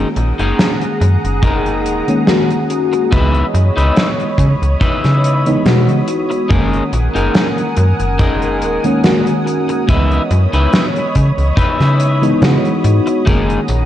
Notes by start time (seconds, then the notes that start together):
Already playing: D#3 G#3 A#3 C#4 G#4 F#5 A#5 D#6
0.16 A#1, closed hi-hat
0.39 F#1 D#4 G#4 A#4, closed hi-hat
0.59 snare, closed hi-hat
0.81 closed hi-hat
1.01 F#2, muted clean electric guitar stroke, closed hi-hat
1.24 F#1, closed hi-hat
1.43 D#4 G#4 A#4, kick, closed hi-hat
1.66 closed hi-hat
1.85 D#1, closed hi-hat
2.07 D#3 G#3 A#3 C#4, closed hi-hat
2.27 D#3 G#3 A#3 F#4, snare, closed hi-hat
2.51 closed hi-hat
2.70 muted clean electric guitar stroke, closed hi-hat
2.93 muted clean electric guitar stroke, closed hi-hat
3.11 C#2 E3 G#3 B3 D#4 E4 B4 C#5 D#5 B5 D#6, kick, closed hi-hat
3.35 closed hi-hat
3.54 F#2, closed hi-hat
3.77 C#2 D#4 E4 B4, closed hi-hat
3.97 snare, closed hi-hat
4.20 closed hi-hat
4.38 C#3, muted clean electric guitar stroke, kick, closed hi-hat
4.62 C#2, closed hi-hat
4.81 D#4 E4 B4, kick, closed hi-hat
5.04 C#3, snare, closed hi-hat
5.24 closed hi-hat
5.45 E3 G#3 B3 D#4, closed hi-hat
5.65 B2 E3 G#3 B3 F#4, snare, closed hi-hat
5.88 C#3, closed hi-hat
6.08 muted clean electric guitar stroke, closed hi-hat
6.30 muted clean electric guitar stroke, closed hi-hat
6.49 F#1 D#3 G#3 A#3 C#4 D#4 G#4 A#4 F#5 G#5, kick, closed hi-hat
6.73 closed hi-hat
6.93 A#1, closed hi-hat
7.15 F#1 D#4 G#4 A#4, closed hi-hat
7.35 snare, closed hi-hat
7.58 closed hi-hat
7.77 F#2, muted clean electric guitar stroke, closed hi-hat
8.00 F#1, closed hi-hat
8.19 D#4 G#4 A#4, kick, closed hi-hat
8.42 closed hi-hat
8.62 D#1, closed hi-hat
8.84 D#3 G#3 A#3 C#4, closed hi-hat
9.03 D#3 G#3 A#3 F#4, snare, closed hi-hat
9.27 closed hi-hat
9.46 muted clean electric guitar stroke, closed hi-hat
9.69 muted clean electric guitar stroke, closed hi-hat
9.87 C#2 E3 G#3 B3 D#4 E4 B4 C#5 D#5 B5, kick, closed hi-hat
10.11 closed hi-hat
10.31 F#2, closed hi-hat
10.53 C#2 D#4 E4 B4, closed hi-hat
10.73 snare, closed hi-hat
10.96 closed hi-hat
11.15 C#3, muted clean electric guitar stroke, kick, closed hi-hat
11.38 C#2, closed hi-hat
11.57 D#4 E4 B4, kick, closed hi-hat
11.80 C#3, snare, closed hi-hat
12.00 closed hi-hat
12.22 E3 G#3 B3 D#4, closed hi-hat
12.41 C#3 E3 G#3 B3 F#4, snare, closed hi-hat
12.65 closed hi-hat
12.84 G#2, muted clean electric guitar stroke, closed hi-hat
13.07 muted clean electric guitar stroke, closed hi-hat
13.25 F#1 D#3 G#3 A#3 C#4 D#4 G#4 A#4 F#5 A#5, kick, closed hi-hat, tambourine
13.50 closed hi-hat
13.68 A#1, closed hi-hat, tambourine